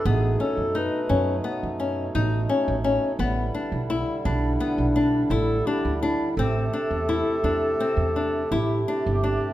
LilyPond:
<<
  \new Staff \with { instrumentName = "Clarinet" } { \time 9/8 \key a \minor \tempo 4. = 57 gis'8 a'8 b'4 r2 r8 | r4. d'4. a'8 g'8 e'8 | a'2. g'4. | }
  \new Staff \with { instrumentName = "Nylon-string guitar" } { \time 9/8 \key a \minor b8 cis'8 dis'8 cis'8 b8 cis'8 dis'8 cis'8 cis'8 | b8 d'8 e'8 d'8 b8 d'8 e'8 d'8 d'8 | c'8 d'8 e'8 d'8 c'8 d'8 e'8 d'8 d'8 | }
  \new Staff \with { instrumentName = "Harmonium" } { \time 9/8 \key a \minor <b, a dis'>1~ <b, a dis'>8 | <d g e'>1~ <d g e'>8 | <c a g'>1~ <c a g'>8 | }
  \new Staff \with { instrumentName = "Upright bass" } { \clef bass \time 9/8 \key a \minor a,,8 r16 fis,8 r16 fis,8 r16 fis,8. a,,8 r16 a,,8 r16 | a,,8 r16 b,,8 r16 b,,8 r16 b,,8. a,,8 r16 d,8 r16 | a,,8 r16 e,8 r16 e,8 r16 e,8. a,,8 r16 g,,8 r16 | }
>>